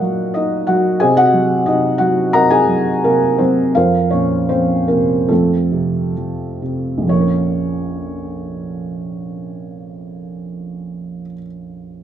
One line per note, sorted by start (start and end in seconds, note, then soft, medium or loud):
0.00 0.97 A#2 medium
0.00 0.68 F#3 soft
0.00 0.36 A#3 medium
0.00 0.36 D#4 medium
0.00 1.04 F4 medium
0.00 0.69 F#4 medium
0.00 0.31 A#4 medium
0.00 0.34 D#5 medium
0.00 1.03 F5 medium
0.00 0.37 F#5 loud
0.34 1.00 A#3 soft
0.34 0.66 D#4 medium
0.34 0.65 D#5 medium
0.67 1.00 F#3 soft
0.67 0.99 F#4 medium
0.67 1.02 F#5 medium
1.00 1.65 C3 medium
1.00 1.17 G#4 medium
1.00 1.17 C5 medium
1.00 1.16 D#5 medium
1.00 1.16 G#5 loud
1.17 1.64 F#4 medium
1.17 1.64 D#5 medium
1.17 1.68 F#5 loud
1.34 1.99 F#3 medium
1.66 2.33 C3 medium
1.66 1.98 D#4 medium
1.66 1.97 D#5 medium
1.98 2.67 F#3 soft
1.98 2.32 F#4 medium
1.98 2.33 F#5 medium
2.33 3.02 C3 soft
2.33 2.51 A#4 medium
2.33 2.50 D#5 medium
2.33 2.51 F#5 medium
2.33 2.52 A#5 medium
2.50 3.00 G#4 medium
2.50 3.00 D#5 medium
2.50 3.05 G#5 loud
2.69 3.38 F#3 soft
3.04 3.73 C3 soft
3.04 3.37 A#3 medium
3.04 3.40 A#4 medium
3.38 3.74 F#3 soft
3.38 3.73 C4 medium
3.38 3.75 C5 medium
3.75 4.49 F2 medium
3.75 4.10 F4 medium
3.75 4.10 A#4 medium
3.75 4.10 C5 medium
3.75 4.09 F5 medium
4.11 5.27 A#2 soft
4.11 4.48 C#4 medium
4.11 4.47 C#5 medium
4.49 5.28 F2 soft
4.49 4.87 C4 medium
4.49 4.86 C5 medium
4.88 5.29 C3 soft
4.88 5.27 A#3 medium
4.88 5.31 A#4 medium
5.29 7.01 F2 medium
5.29 6.13 A3 soft
5.29 6.13 C4 soft
5.29 6.13 F4 soft
5.29 6.12 A4 medium
5.72 6.60 C3 soft
6.17 7.05 F3 soft
6.62 7.08 C3 soft
6.98 11.22 A#1 soft
7.02 11.26 F2 soft
7.07 11.31 F3 soft
7.07 11.33 C#5 medium
7.12 11.36 A#3 soft
7.17 11.41 C#4 soft
7.21 11.45 A#4 soft